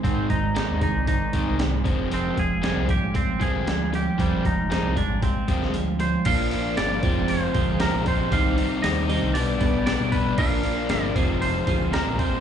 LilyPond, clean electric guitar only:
\new Staff \with { instrumentName = "Clean electric guitar" } { \time 4/4 \key f \dorian \tempo 4 = 116 c'8 ees'4 ees'8 ees'4 r4 | c'8 aes'4 g'8 c'8 aes'4 g'8 | g8 ees'8 ees'8 d'8 c'4 r8 c''8 | f''4 d''4 c''4 bes'8 c''8 |
f''4 ees''4 d''4 d''8 b'8 | f''4 d''4 c''4 bes'8 c''8 | }